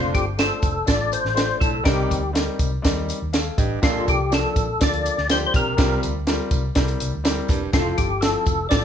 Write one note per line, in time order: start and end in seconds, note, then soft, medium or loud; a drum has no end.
0.00 0.15 F1 medium
0.00 0.24 F2 medium
0.00 0.23 A3 medium
0.00 0.23 D4 medium
0.00 0.13 F4 medium
0.00 0.23 F4 medium
0.00 0.24 C5 medium
0.15 0.50 G1 medium
0.15 0.26 G4 medium
0.15 kick medium
0.15 closed hi-hat medium
0.15 tambourine soft
0.38 0.72 A3 medium
0.38 0.72 D4 medium
0.38 0.72 F4 medium
0.38 0.90 A4 medium
0.38 0.73 C5 medium
0.38 snare medium
0.38 closed hi-hat medium
0.38 tambourine medium
0.62 0.81 F1 medium
0.62 kick medium
0.62 closed hi-hat medium
0.62 tambourine medium
0.86 1.15 A1 medium
0.86 1.20 A3 medium
0.86 1.21 D4 medium
0.86 1.21 F4 medium
0.86 1.21 A4 medium
0.86 1.13 D5 loud
0.86 kick medium
0.86 snare loud
0.86 closed hi-hat medium
0.86 tambourine medium
1.12 1.58 C5 medium
1.12 closed hi-hat medium
1.12 tambourine medium
1.25 1.52 A1 medium
1.25 snare soft
1.34 1.69 A3 medium
1.34 1.69 D4 medium
1.34 1.70 F4 medium
1.34 1.70 C5 medium
1.34 snare loud
1.34 closed hi-hat medium
1.34 tambourine loud
1.60 1.79 B1 medium
1.60 1.80 A2 medium
1.60 1.84 A4 medium
1.60 kick medium
1.60 closed hi-hat medium
1.60 tambourine medium
1.84 2.04 C2 loud
1.84 2.20 C3 medium
1.84 2.18 G3 medium
1.84 2.19 C4 medium
1.84 2.19 D#4 medium
1.84 2.31 G4 medium
1.84 2.19 A#4 medium
1.84 kick loud
1.84 snare loud
1.84 closed hi-hat medium
1.84 tambourine medium
2.11 2.47 D2 medium
2.11 kick medium
2.11 closed hi-hat medium
2.11 tambourine medium
2.33 2.68 G3 medium
2.33 2.68 C4 medium
2.33 2.68 D#4 medium
2.33 2.69 A#4 medium
2.33 snare loud
2.33 closed hi-hat medium
2.33 tambourine medium
2.59 2.77 C2 medium
2.59 kick medium
2.59 closed hi-hat medium
2.59 tambourine medium
2.82 3.12 D#2 medium
2.82 3.17 G3 medium
2.82 3.17 C4 medium
2.82 3.17 D#4 medium
2.82 3.18 A#4 medium
2.82 kick medium
2.82 snare loud
2.82 closed hi-hat medium
2.82 tambourine medium
3.09 closed hi-hat medium
3.09 tambourine soft
3.22 3.49 D#2 medium
3.33 3.57 A4 medium
3.33 3.56 F5 medium
3.33 snare loud
3.33 closed hi-hat medium
3.33 tambourine loud
3.58 3.76 A1 medium
3.58 3.77 G2 medium
3.58 4.04 G4 medium
3.58 4.04 D#5 medium
3.58 kick medium
3.58 closed hi-hat medium
3.58 tambourine soft
3.82 4.00 A#1 loud
3.82 4.16 A#2 medium
3.82 4.16 F3 medium
3.82 4.16 A#3 medium
3.82 4.16 D4 medium
3.82 4.06 F4 medium
3.82 4.17 A4 loud
3.82 kick loud
3.82 snare loud
3.82 closed hi-hat medium
3.82 tambourine medium
4.08 4.43 C2 medium
4.08 4.33 G4 medium
4.08 kick medium
4.08 closed hi-hat medium
4.08 tambourine medium
4.30 4.64 F3 medium
4.30 4.65 A#3 medium
4.30 4.65 D4 medium
4.30 4.65 A4 medium
4.30 snare medium
4.30 closed hi-hat medium
4.30 tambourine medium
4.34 4.83 A4 medium
4.56 4.74 A#1 medium
4.56 kick medium
4.56 closed hi-hat medium
4.56 tambourine medium
4.79 5.08 D2 medium
4.79 5.13 F3 medium
4.79 5.14 A#3 medium
4.79 5.14 D4 medium
4.79 5.14 A4 medium
4.79 5.27 D5 medium
4.79 kick medium
4.79 snare loud
4.79 closed hi-hat medium
4.79 tambourine loud
4.93 closed hi-hat soft
5.06 closed hi-hat medium
5.06 tambourine soft
5.18 5.45 D2 medium
5.18 snare soft
5.28 5.62 F3 medium
5.28 5.63 A#3 medium
5.28 5.63 D4 medium
5.28 5.63 G4 medium
5.28 5.39 C5 medium
5.28 snare medium
5.28 closed hi-hat medium
5.28 tambourine loud
5.47 5.54 C5 medium
5.54 5.72 B1 medium
5.54 5.74 C3 medium
5.54 6.01 A#4 medium
5.54 kick medium
5.54 closed hi-hat medium
5.54 tambourine soft
5.77 5.96 C2 loud
5.77 6.12 C3 medium
5.77 6.11 G3 medium
5.77 6.11 C4 medium
5.77 6.12 F4 medium
5.77 6.12 A#4 medium
5.77 kick loud
5.77 snare loud
5.77 closed hi-hat medium
5.77 tambourine medium
6.03 6.39 D2 medium
6.03 closed hi-hat medium
6.03 tambourine soft
6.27 6.60 G3 medium
6.27 6.61 C4 medium
6.27 6.61 F4 medium
6.27 6.61 A#4 medium
6.27 snare medium
6.27 closed hi-hat medium
6.27 tambourine medium
6.51 6.69 C2 medium
6.51 kick medium
6.51 closed hi-hat medium
6.51 tambourine medium
6.75 6.94 C2 medium
6.75 7.09 G3 medium
6.75 7.09 C4 medium
6.75 7.10 E4 medium
6.75 7.10 A#4 medium
6.75 kick medium
6.75 snare loud
6.75 closed hi-hat medium
6.75 tambourine medium
6.88 closed hi-hat soft
7.00 7.10 C2 medium
7.00 closed hi-hat medium
7.00 tambourine medium
7.13 7.40 D2 medium
7.24 7.58 G3 medium
7.24 7.58 C4 medium
7.24 7.58 E4 medium
7.24 7.59 A#4 medium
7.24 snare loud
7.24 closed hi-hat medium
7.24 tambourine loud
7.48 7.67 E1 medium
7.48 7.68 G2 medium
7.48 kick medium
7.48 closed hi-hat medium
7.48 tambourine medium
7.72 7.91 F1 loud
7.72 8.08 F2 medium
7.72 8.07 F3 medium
7.72 8.07 C4 medium
7.72 8.07 E4 medium
7.72 7.97 F4 medium
7.72 8.08 A4 medium
7.72 kick loud
7.72 snare loud
7.72 closed hi-hat medium
7.72 tambourine medium
7.98 8.34 G1 medium
7.98 8.23 G4 medium
7.98 kick medium
7.98 closed hi-hat medium
7.98 tambourine soft
8.21 8.56 F3 medium
8.21 8.56 C4 medium
8.21 8.56 E4 medium
8.21 8.67 A4 medium
8.21 8.56 A4 medium
8.21 snare loud
8.21 closed hi-hat medium
8.21 tambourine medium
8.46 8.65 F1 medium
8.46 kick medium
8.46 closed hi-hat medium
8.46 tambourine medium
8.69 8.85 A1 medium
8.69 8.85 F3 medium
8.69 8.85 C4 medium
8.69 8.85 E4 medium
8.69 8.85 A4 medium
8.69 8.85 D5 loud
8.69 kick medium
8.69 snare loud
8.69 closed hi-hat medium
8.69 tambourine loud